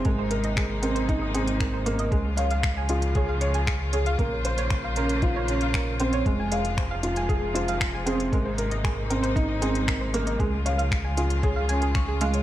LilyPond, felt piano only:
\new Staff \with { instrumentName = "Felt piano" } { \time 4/4 \key aes \mixolydian \tempo 4 = 116 aes8 bes'8 r8 c'8 ees'8 c'8 r8 bes8 | aes8 f''8 r8 f'8 aes'8 des''8 r8 aes'8 | bes8 c''8 r8 des'8 f'8 des'8 r8 c'8 | aes8 f''8 r8 f'8 aes'8 f'8 r8 c'8 |
aes8 bes'8 r8 c'8 ees'8 c'8 r8 bes8 | aes8 f''8 r8 f'8 aes'8 des'8 r8 aes8 | }